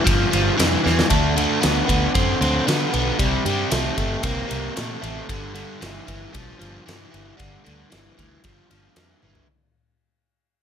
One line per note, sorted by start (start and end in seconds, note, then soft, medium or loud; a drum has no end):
0.04 0.23 G1 medium
0.04 0.29 G2 medium
0.04 0.29 F3 medium
0.04 kick loud
0.04 ride loud
0.31 0.50 G1 medium
0.31 0.55 G2 medium
0.31 0.56 F3 medium
0.31 ride medium
0.57 0.76 F2 medium
0.57 0.81 G2 medium
0.57 0.82 E3 medium
0.57 snare loud
0.57 ride medium
0.83 1.02 E2 medium
0.83 1.08 G2 medium
0.83 1.08 E3 medium
0.83 snare soft
0.99 snare medium
1.09 1.44 D2 loud
1.09 1.34 D3 medium
1.09 1.34 A3 medium
1.09 kick medium
1.09 ride medium
1.36 1.60 D3 medium
1.36 1.60 A3 medium
1.36 ride medium
1.61 1.80 D2 medium
1.61 1.86 D3 medium
1.61 1.86 B3 medium
1.61 snare loud
1.61 ride medium
1.87 2.06 D2 medium
1.87 2.12 D3 medium
1.87 2.12 B3 medium
1.87 kick medium
1.87 ride medium
2.15 2.32 F#2 medium
2.15 2.39 D3 medium
2.15 2.39 C4 medium
2.15 kick loud
2.15 ride medium
2.41 2.58 D2 medium
2.41 2.65 D3 medium
2.41 2.65 C4 medium
2.41 ride medium
2.67 2.91 D3 medium
2.67 2.85 D3 medium
2.67 2.91 B3 medium
2.67 snare loud
2.67 ride medium
2.93 3.10 B1 medium
2.93 3.17 D3 medium
2.93 3.17 B3 medium
2.93 ride medium
3.19 3.36 C2 medium
3.19 3.43 C3 medium
3.19 3.43 G3 medium
3.19 kick loud
3.19 ride medium
3.45 3.62 G2 medium
3.45 3.69 C3 medium
3.45 3.70 G3 medium
3.45 ride medium
3.70 3.89 C2 medium
3.70 3.95 C3 medium
3.70 3.95 A3 medium
3.70 snare loud
3.70 ride medium
3.96 4.15 G1 medium
3.96 4.21 C3 medium
3.96 4.22 A3 medium
3.96 kick medium
3.96 ride medium
4.23 4.41 C2 medium
4.23 4.47 C3 medium
4.23 4.48 A#3 medium
4.23 kick loud
4.23 ride medium
4.48 4.68 C2 medium
4.48 4.73 C3 medium
4.48 4.74 A#3 medium
4.48 ride medium
4.76 4.94 A#2 medium
4.76 5.00 C3 medium
4.76 5.01 A3 medium
4.76 snare loud
4.76 ride medium
5.02 5.20 A1 medium
5.02 5.26 C3 medium
5.02 5.26 A3 medium
5.02 ride medium
5.29 5.63 G1 medium
5.29 5.53 G2 medium
5.29 5.53 D3 medium
5.29 kick loud
5.29 ride medium
5.54 5.79 G2 medium
5.54 5.79 D3 medium
5.54 ride medium
5.80 5.99 G1 medium
5.80 6.05 G2 medium
5.80 6.05 E3 medium
5.80 snare loud
5.80 ride medium
6.07 6.25 G1 medium
6.07 6.31 G2 medium
6.07 6.32 E3 medium
6.07 kick medium
6.07 ride medium
6.33 6.52 B1 medium
6.33 6.57 G2 medium
6.33 6.58 F3 medium
6.33 kick loud
6.33 ride medium
6.58 6.77 G1 medium
6.58 6.83 G2 medium
6.58 6.84 F3 medium
6.58 ride medium
6.86 7.10 G2 medium
6.86 7.04 G2 medium
6.86 7.10 E3 medium
6.86 snare loud
6.86 ride medium
7.11 7.30 G1 medium
7.11 7.36 G2 medium
7.11 7.36 E3 medium
7.11 ride medium
7.37 7.57 G1 loud
7.37 7.62 G2 medium
7.37 7.62 D3 medium
7.37 kick loud
7.37 ride medium
7.64 7.83 D2 medium
7.64 7.89 G2 medium
7.64 7.89 D3 medium
7.64 ride medium
7.90 8.09 G1 medium
7.90 8.15 G2 medium
7.90 8.15 E3 medium
7.90 snare loud
7.90 ride medium
8.17 8.36 D2 medium
8.17 8.41 G2 medium
8.17 8.42 E3 medium
8.17 kick medium
8.17 ride medium
8.44 8.62 G1 medium
8.44 8.68 G2 medium
8.44 8.68 F3 medium
8.44 kick loud
8.44 ride medium
8.70 8.88 G1 medium
8.70 8.94 G2 medium
8.70 8.94 F3 medium
8.70 ride medium
8.96 9.14 F2 medium
8.96 9.21 G2 medium
8.96 9.21 E3 medium
8.96 snare loud
8.96 ride medium
9.23 9.40 G1 medium
9.23 9.47 G2 medium
9.23 9.47 E3 medium
9.23 high tom medium
9.35 floor tom medium